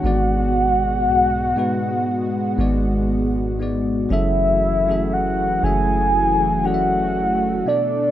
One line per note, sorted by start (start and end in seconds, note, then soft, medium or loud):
0.00 1.07 G#1 loud
0.00 1.27 G#2 loud
0.00 4.07 B2 medium
0.00 4.06 G#3 medium
0.00 1.27 G#3 medium
0.00 4.07 F#4 medium
0.00 3.56 F#5 loud
0.05 1.28 B3 medium
0.05 1.28 F#4 medium
0.05 1.29 D5 loud
1.06 1.54 B1 loud
1.55 2.39 G#2 loud
1.55 2.39 G#3 medium
1.55 2.40 B3 medium
1.55 2.40 F#4 medium
1.59 2.41 B4 loud
2.57 4.07 G#1 loud
2.57 3.40 G#2 medium
2.57 3.41 G#3 medium
2.57 3.41 B3 medium
2.57 3.42 F#4 medium
2.61 3.42 D5 loud
3.59 4.01 G#2 medium
3.59 4.01 G#3 medium
3.59 4.02 B3 medium
3.59 4.02 F#4 medium
3.63 4.03 D5 medium
4.09 5.59 F#1 loud
4.09 7.63 E3 medium
4.09 4.72 F#3 loud
4.09 8.11 A3 medium
4.09 4.72 C#4 medium
4.09 7.63 F#4 medium
4.09 4.73 G#4 medium
4.09 4.73 A4 loud
4.09 5.15 E5 loud
4.13 4.74 E5 loud
4.88 5.48 F#3 medium
4.88 5.49 C#4 medium
4.88 5.49 G#4 medium
4.88 5.50 A4 medium
4.92 5.50 E5 medium
5.13 5.65 F#5 loud
5.62 7.62 F#1 loud
5.62 6.45 F#3 medium
5.62 6.46 C#4 medium
5.62 6.46 G#4 medium
5.62 6.47 A4 medium
5.62 6.67 G#5 loud
5.66 6.48 E5 medium
6.63 7.66 F#3 medium
6.63 7.66 C#4 medium
6.63 7.67 G#4 medium
6.63 7.67 A4 medium
6.63 7.69 F#5 loud
6.68 6.73 D5 medium
6.74 7.71 E5 medium
7.65 8.11 B2 medium
7.65 8.11 D3 medium
7.65 8.11 B3 medium
7.65 8.11 D4 loud
7.65 8.11 D4 medium
7.65 8.11 A4 medium
7.65 8.11 D5 medium
7.69 8.11 D5 medium